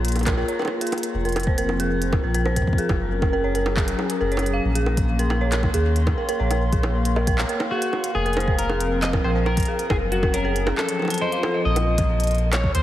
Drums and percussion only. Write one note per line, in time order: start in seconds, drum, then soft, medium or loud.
0.05 closed hi-hat medium
0.08 closed hi-hat medium
0.12 closed hi-hat medium
0.16 closed hi-hat soft
0.16 high bongo soft
0.19 closed hi-hat soft
0.19 high bongo soft
0.23 kick loud
0.23 clap loud
0.23 closed hi-hat soft
0.27 closed hi-hat medium
0.27 high bongo soft
0.32 high bongo soft
0.48 closed hi-hat medium
0.59 high bongo soft
0.62 high bongo soft
0.65 high bongo medium
0.68 high bongo medium
0.81 closed hi-hat medium
0.87 closed hi-hat medium
0.92 closed hi-hat medium
0.92 high bongo medium
0.98 closed hi-hat soft
1.03 closed hi-hat medium
1.25 closed hi-hat soft
1.29 closed hi-hat soft
1.32 closed hi-hat soft
1.36 closed hi-hat soft
1.36 high bongo medium
1.40 closed hi-hat soft
1.43 kick loud
1.43 closed hi-hat soft
1.58 closed hi-hat medium
1.69 high bongo soft
1.80 closed hi-hat medium
2.02 closed hi-hat medium
2.13 kick loud
2.13 high bongo medium
2.35 closed hi-hat medium
2.46 high bongo soft
2.56 kick medium
2.56 closed hi-hat medium
2.62 kick medium
2.67 kick medium
2.73 kick medium
2.78 closed hi-hat medium
2.89 kick medium
2.89 high bongo medium
3.22 kick loud
3.22 high bongo soft
3.55 closed hi-hat soft
3.66 high bongo medium
3.77 kick loud
3.77 clap loud
3.88 closed hi-hat medium
3.99 high bongo soft
4.10 closed hi-hat medium
4.32 closed hi-hat soft
4.37 closed hi-hat soft
4.37 high bongo medium
4.46 closed hi-hat soft
4.75 closed hi-hat medium
4.86 high bongo soft
4.97 kick loud
4.97 closed hi-hat medium
5.19 closed hi-hat medium
5.30 high bongo medium
5.52 clap loud
5.52 closed hi-hat medium
5.63 kick loud
5.63 high bongo medium
5.74 closed hi-hat medium
5.96 closed hi-hat soft
6.07 kick loud
6.07 high bongo medium
6.29 closed hi-hat medium
6.51 closed hi-hat medium
6.51 high bongo soft
6.72 kick loud
6.72 closed hi-hat soft
6.83 high bongo medium
7.05 closed hi-hat medium
7.16 high bongo soft
7.27 kick loud
7.27 closed hi-hat medium
7.38 clap loud
7.49 closed hi-hat soft
7.60 high bongo medium
7.82 closed hi-hat medium
7.93 high bongo medium
8.04 closed hi-hat medium
8.26 closed hi-hat soft
8.33 closed hi-hat soft
8.33 high bongo medium
8.40 closed hi-hat soft
8.48 kick loud
8.59 closed hi-hat medium
8.70 high bongo medium
8.80 closed hi-hat medium
9.02 clap loud
9.02 closed hi-hat soft
9.13 kick loud
9.13 high bongo medium
9.46 high bongo medium
9.57 kick loud
9.57 closed hi-hat medium
9.60 closed hi-hat medium
9.63 closed hi-hat medium
9.65 closed hi-hat soft
9.79 closed hi-hat medium
9.90 kick medium
9.90 high bongo medium
10.12 closed hi-hat medium
10.23 kick loud
10.23 high bongo medium
10.34 closed hi-hat medium
10.56 closed hi-hat medium
10.67 high bongo medium
10.78 clap loud
10.89 closed hi-hat medium
11.00 high bongo soft
11.02 high bongo soft
11.05 high bongo soft
11.08 closed hi-hat medium
11.08 high bongo soft
11.14 closed hi-hat medium
11.18 closed hi-hat medium
11.32 closed hi-hat medium
11.43 high bongo medium
11.76 closed hi-hat medium
11.76 high bongo medium
11.98 kick loud
11.98 closed hi-hat loud
11.98 low conga medium
12.20 closed hi-hat medium
12.24 closed hi-hat soft
12.27 closed hi-hat soft
12.31 closed hi-hat soft
12.35 closed hi-hat soft
12.38 closed hi-hat soft
12.53 clap loud
12.53 closed hi-hat medium
12.53 high bongo medium
12.64 kick loud
12.75 closed hi-hat loud